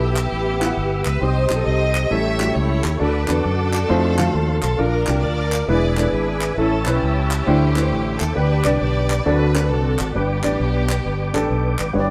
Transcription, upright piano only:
0.00 0.12 B2 medium
0.00 0.22 B3 medium
0.00 0.22 E4 medium
0.00 0.22 A4 medium
0.60 0.99 B3 medium
0.60 0.99 E4 medium
0.60 0.65 F4 medium
0.66 1.02 F#5 medium
1.21 1.91 C3 medium
1.21 1.38 C4 medium
1.21 1.39 D#4 medium
1.21 1.39 G4 medium
1.49 2.00 C4 medium
1.49 2.00 D#4 medium
1.49 1.54 G4 medium
1.56 2.04 A4 medium
2.10 2.80 A2 medium
2.10 2.33 G3 medium
2.10 2.34 A3 medium
2.10 2.34 C#4 medium
2.10 2.34 E4 medium
2.10 2.34 A4 medium
2.39 2.77 G3 medium
2.39 2.78 A3 medium
2.39 2.78 C#4 medium
2.39 2.78 E4 medium
2.39 2.44 F#4 medium
2.46 2.81 G4 medium
2.99 3.69 D3 medium
2.99 3.17 D4 medium
2.99 3.17 F#4 medium
2.99 3.17 A4 medium
3.28 3.79 D4 medium
3.28 3.79 F#4 medium
3.28 3.79 B4 medium
3.89 4.12 A3 medium
3.89 4.12 C4 medium
3.89 4.12 D#4 medium
3.89 4.12 F4 medium
3.89 4.13 C5 loud
4.18 4.56 D#3 medium
4.18 4.57 F3 medium
4.18 4.56 A3 medium
4.18 4.56 C4 medium
4.18 4.57 F5 medium
4.78 5.48 A#2 medium
4.78 4.96 D4 medium
4.78 4.96 F4 medium
4.78 4.96 A#4 medium
5.07 5.58 D4 medium
5.07 5.58 F4 medium
5.07 5.58 G4 medium
5.68 6.38 E3 medium
5.68 5.91 G#3 medium
5.68 5.91 B3 medium
5.68 5.92 D4 medium
5.68 5.92 E4 medium
5.68 5.92 B4 medium
5.97 6.35 G#3 medium
5.97 6.35 B3 medium
5.97 6.35 D4 medium
5.97 6.35 E4 medium
5.97 6.01 A4 medium
6.03 6.38 B4 medium
6.57 7.27 A2 medium
6.57 6.74 C#4 medium
6.57 6.75 E4 medium
6.57 6.75 A4 medium
6.86 6.90 C4 medium
6.86 7.37 E4 medium
6.86 7.37 B4 medium
6.91 7.39 C#4 medium
7.47 8.16 D3 medium
7.47 7.70 A3 loud
7.47 7.70 D4 medium
7.47 7.70 E4 medium
7.47 7.70 G4 medium
7.47 7.70 C5 loud
7.75 8.13 A3 medium
7.75 8.14 E4 medium
7.75 8.14 G4 medium
7.75 7.80 B4 medium
7.81 8.17 C5 medium
8.35 9.05 D3 medium
8.35 8.53 D4 medium
8.35 8.53 G4 medium
8.35 8.53 B4 medium
8.64 9.15 D4 medium
8.64 9.16 G4 medium
8.64 9.16 D5 medium
9.25 9.95 D3 medium
9.25 9.49 C4 medium
9.25 9.49 D4 medium
9.25 9.49 F#4 medium
9.25 9.49 A4 medium
9.25 9.49 D5 loud
9.54 9.92 C4 medium
9.54 9.92 D4 medium
9.54 9.93 F#4 medium
9.54 9.93 A4 medium
9.54 9.59 A#4 medium
9.60 9.95 B4 medium
10.15 10.85 G2 medium
10.15 10.32 D4 medium
10.15 10.33 G4 medium
10.15 10.33 B4 medium
10.43 10.94 D4 medium
10.43 10.95 G4 medium
10.43 10.95 D5 medium
11.34 11.72 D4 medium
11.34 11.72 G4 medium
11.34 11.72 A4 medium
11.93 12.11 G2 medium
11.93 12.11 B3 medium
11.93 12.11 D4 medium
11.93 12.11 G4 medium
11.93 12.02 C#5 medium
12.00 12.11 D5 medium

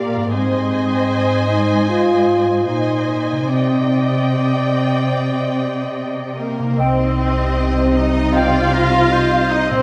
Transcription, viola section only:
0.00 0.31 A#4 medium
0.00 0.35 D5 soft
0.36 2.66 C5 medium
0.36 2.65 D#5 medium
2.67 3.48 C5 soft
2.67 3.48 D#5 soft
3.49 6.37 D5 soft
3.49 6.33 D#5 soft
6.37 6.75 A#3 soft
6.78 7.95 C4 medium
7.97 8.35 D#4 medium
8.35 9.51 F4 medium
9.51 9.70 D#4 medium
9.71 9.82 C4 medium

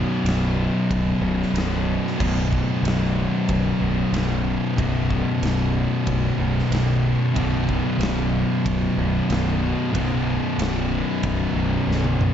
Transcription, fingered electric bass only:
0.24 0.67 B0 medium
0.90 1.11 B0 medium
1.20 1.42 B0 medium
1.53 1.96 B0 loud
2.20 2.62 B0 loud
2.82 3.25 B0 medium
3.49 3.70 B0 medium
3.80 4.02 B0 loud
4.12 4.55 B0 loud
4.78 5.21 B0 loud
5.42 5.84 B0 medium
6.07 6.28 B0 loud
6.38 6.60 B0 medium
6.70 7.13 B0 loud
7.36 7.79 B0 loud
7.98 8.42 B0 loud
8.66 8.87 B0 medium
8.97 9.18 B0 medium
9.30 9.72 B0 loud
9.95 10.37 B0 loud
10.58 11.00 B0 medium
11.24 11.45 B0 loud
11.53 11.75 B0 loud
11.87 12.30 B0 loud

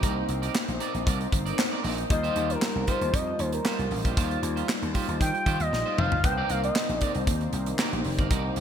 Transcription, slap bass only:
0.03 0.22 C2 loud
0.29 0.48 C2 loud
0.68 0.77 A#1 medium
0.95 1.03 A#1 medium
1.07 1.25 C2 loud
1.32 1.51 G1 medium
1.84 2.03 A#1 medium
2.10 2.29 D#2 loud
2.36 2.55 D#2 loud
2.76 2.84 C2 medium
3.01 3.10 D#2 medium
3.13 3.32 F2 loud
3.39 3.58 D#2 medium
3.79 3.88 C2 medium
3.91 4.01 A1 loud
4.05 4.14 A#1 medium
4.17 4.36 D#2 loud
4.43 4.61 D#2 loud
4.82 4.91 D#2 medium
5.08 5.17 D#2 medium
5.21 5.30 D#3 loud
5.46 5.56 D#3 medium
5.60 5.69 D#2 medium
5.72 5.82 A#1 medium
5.98 6.08 F1 medium
6.12 6.21 G1 loud
6.24 6.43 C2 loud
6.50 6.69 C2 medium
6.89 6.98 A#1 medium
7.15 7.27 C2 medium
7.27 7.46 D#2 medium
7.53 7.72 C2 medium
7.93 8.01 A#1 medium
8.05 8.15 F1 medium
8.18 8.27 G1 medium
8.31 8.49 C2 loud
8.57 8.60 C2 loud

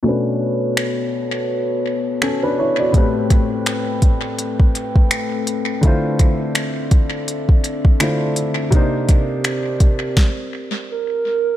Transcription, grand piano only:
0.03 2.89 B2 medium
0.03 2.89 A3 medium
0.03 2.18 C#4 medium
0.07 2.19 D4 medium
0.07 2.19 B4 medium
2.22 2.42 C#4 medium
2.22 2.42 A4 medium
2.43 2.58 D4 medium
2.43 2.57 B4 medium
2.59 2.78 E4 medium
2.59 2.78 C#5 medium
2.80 3.14 F#4 soft
2.80 3.13 D5 medium
2.92 5.78 A2 medium
2.92 5.79 A3 medium
2.92 5.80 C4 medium
2.96 5.80 G4 medium
2.96 5.81 B4 medium
5.81 7.95 D3 medium
5.81 7.96 A3 medium
5.81 7.96 E4 medium
5.85 7.97 F4 medium
5.85 7.98 C5 medium
8.00 8.72 D3 medium
8.00 8.72 A3 soft
8.00 8.73 E4 soft
8.00 8.73 F4 soft
8.00 8.73 C5 medium
8.71 10.13 C3 medium
8.71 10.14 A#3 medium
8.71 10.14 D4 medium
8.75 10.15 D#4 medium
8.75 10.16 C5 medium

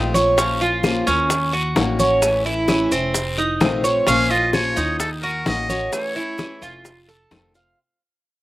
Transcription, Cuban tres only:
0.00 0.13 D#4 medium
0.14 0.37 C#5 medium
0.38 0.60 C#4 medium
0.61 1.06 F4 medium
1.07 1.52 C#4 medium
1.53 1.98 F#4 medium
2.00 2.44 C#5 medium
2.46 2.91 E4 medium
2.92 3.37 C4 medium
3.38 3.83 D#4 medium
3.84 4.07 C#5 medium
4.07 4.30 C#4 medium
4.31 4.75 F4 medium
4.77 5.22 D#4 medium
5.23 5.68 F#4 medium
5.70 6.14 C#5 medium
6.16 6.61 E4 medium
6.62 7.07 F4 medium
7.09 7.53 A4 medium
7.55 7.77 F5 medium

